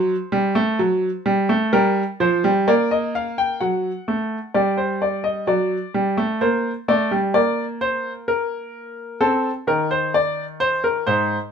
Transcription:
Already playing: F#3 C5
0.32 G3
0.55 A3
0.79 F#3
1.26 G3
1.49 A3
1.73 G3 A#4
2.20 F3 C5
2.44 G3
2.68 A#3 D5
2.91 D#5
3.15 F5
3.38 G5
3.60 F#3 F#5
4.08 A3
4.54 G3 D5
4.77 C5
5.02 D5
5.24 D#5
5.47 F#3 D5
5.94 G3
6.17 A3
6.41 A#3 C5
6.88 A3 D5
7.11 G3
7.34 A#3 D5
7.81 C5
8.28 A#4
9.21 C4 A4
9.67 D#3 A#4
9.91 C5
10.14 D5
10.60 C5
10.84 A#4
11.07 G#2 C5

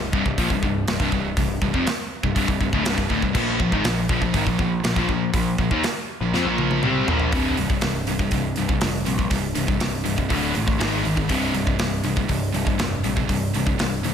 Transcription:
Already playing: C1
0.12 C1 C2 G2, kick
0.25 C1 C2 G2, kick
0.38 A#1 A#2 F3, kick, open hi-hat
0.50 C1 C2 G2, kick
0.63 C1 C2 G2, kick
0.88 C1 C2 G2, snare, open hi-hat
1.00 C1 C2 G2, kick
1.12 C1 C2 G2, kick
1.37 C1 C2 G2, kick, open hi-hat
1.62 C1 C2 G2, kick
1.74 F1 F2 C3, kick
1.87 snare, open hi-hat
2.23 C1 C2 G2, kick
2.36 C1 C2 G2, kick, open hi-hat
2.48 C1 C2 G2, kick
2.61 C1 C2 G2, kick
2.73 D1 D2 A2, kick
2.85 C1 C2 G2, snare, open hi-hat
2.98 C1 C2 G2, kick
3.10 D1 D2 A2, kick
3.22 C1 C2 G2, kick
3.35 A#1 A#2 F3 A#3, kick, crash
3.59 A#1 A#2 F3, kick
3.72 G#1 G#2 D#3, kick
3.84 A#1 A#2 F3, snare, open hi-hat
4.09 A#1 A#2 F3, kick
4.22 A#1 A#2 F3, kick
4.34 G#1 G#2 D#3, kick, open hi-hat
4.47 A#1 A#2 F3, kick
4.59 A#1 A#2 F3, kick
4.84 A#1 A#2 F3, snare, open hi-hat
4.96 A#1 A#2 F3, kick
5.09 A#1 A#2 F3, kick
5.34 A#1 A#2 F3, kick, open hi-hat
5.58 A#1 A#2 F3, kick
5.71 D#2 D#3 A#3, kick
5.84 snare, open hi-hat
6.21 A#1 A#2 F3
6.33 F2 F3 C4, snare
6.45 A#1 A#2 F3 A#3
6.58 high tom
6.71 high tom
6.83 C2 C3 G3 C4, mid tom
7.07 A#1 A#2 F3 A#3, floor tom
7.20 floor tom
7.32 C1 C2 G2 C3, kick, open hi-hat
7.57 C1 C2 G2, open hi-hat
7.70 C2 G2, kick
7.81 C1 C2 G2, snare, open hi-hat
8.06 C1 C2 G2, open hi-hat
8.19 C2 G2, kick
8.31 C1 C2 G2, kick, open hi-hat
8.56 C1 C2 G2, open hi-hat
8.69 C2 G2, kick
8.81 F1 C2 G2, snare, open hi-hat
9.06 A#1 C2 G2, open hi-hat
9.18 C2 G2, kick
9.30 C1 C2 G2, kick, open hi-hat
9.55 C1 C2 G2, open hi-hat
9.68 C2 G2, kick
9.80 C1 C2 G2, snare, open hi-hat
10.05 C1 C2 G2, open hi-hat
10.18 C2 G2, kick
10.29 D1 D2 A2 D3, kick, open hi-hat
10.55 A1 D2 A2, open hi-hat
10.67 D2 A2, kick
10.79 G#1 G#2 D#3 G#3, snare, open hi-hat
11.04 G#1 G#2 D#3, open hi-hat
11.16 G#2 D#3, kick
11.28 C1 C2 G2 C3, kick, open hi-hat
11.54 C1 C2 G2, open hi-hat
11.67 C2 G2, kick
11.79 C1 C2 G2, snare, open hi-hat
12.04 C1 C2 G2, open hi-hat
12.17 C2 G2, kick
12.29 C1 C2 G2, kick, open hi-hat
12.54 C1 C2 G2, open hi-hat
12.67 C2 G2, kick
12.79 F1 C2 G2, snare, open hi-hat
13.04 A#1 C2 G2, open hi-hat
13.17 C2 G2, kick
13.29 C1 C2 G2, kick, open hi-hat
13.54 C1 C2 G2, open hi-hat
13.67 C2 G2, kick
13.79 C1 C2 G2, snare, open hi-hat
14.04 C1 C2 G2, open hi-hat

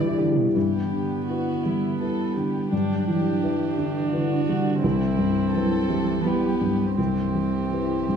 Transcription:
Already playing: G2 D3 G3 E4 G4 B4 D5
0.00 E3 D5
0.08 E4
0.19 D3 G4
0.32 G3
0.37 B2
0.55 G2 E3 B3 G4
0.91 D3
1.28 E4 F#4 B4
1.64 G3 E4
2.00 G3 E4 A4 B4
2.36 D3 G4
2.72 G2 F#3 D4
3.08 E3 D4
3.43 E3 E4 B4
3.78 D3
4.12 D3 E4 F#4 B4
4.48 D3 G3
4.82 C2 E3 C4 E4
5.18 G2
5.53 F#3 E4 A4 B4
5.89 E3 G3
6.25 G3 B3 E4 G4 B4
6.61 G2 F#3
6.97 C2 E3 C4 G4
7.35 G3
7.73 E4 B4
8.08 G2

